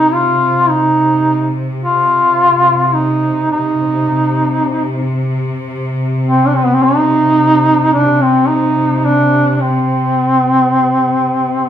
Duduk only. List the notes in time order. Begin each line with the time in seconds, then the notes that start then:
Already playing: D#4
0.12 F4
0.69 D#4
1.82 F4
2.86 F4
2.94 D#4
3.52 D#4
6.27 C4
6.47 D4
6.56 C4
6.66 B3
6.74 C4
6.83 D#4
7.93 D4
8.22 C4
8.48 D#4
8.98 D#4
9.06 D4
9.55 D4
9.61 C4